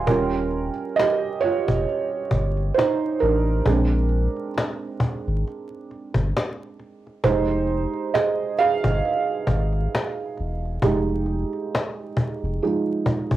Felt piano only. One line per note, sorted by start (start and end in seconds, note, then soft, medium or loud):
0.00 0.31 G5 soft
0.00 0.31 C6 medium
0.07 0.69 G3 medium
0.07 0.94 C#4 medium
0.07 0.70 F4 medium
0.07 0.93 A#4 medium
0.96 1.40 G4 medium
0.96 1.43 D#5 loud
1.41 2.73 F4 medium
1.41 2.80 C#5 loud
2.74 3.19 D#4 medium
2.74 3.21 C5 medium
3.20 3.67 D4 medium
3.20 4.51 A#4 medium
3.67 4.97 G#3 medium
3.67 4.97 C4 medium
3.67 4.97 D4 medium
7.24 10.79 G#3 medium
7.24 8.11 D#4 medium
7.24 10.79 G4 medium
7.24 8.16 C5 loud
8.14 8.56 G#4 medium
8.14 8.60 D#5 medium
8.59 13.37 G#4 medium
8.59 13.37 F5 loud
10.83 12.61 G#3 medium
10.83 12.62 D#4 medium
10.83 13.37 G4 medium
12.62 13.03 F3 soft
12.62 13.03 G#3 soft
12.62 13.03 D#4 medium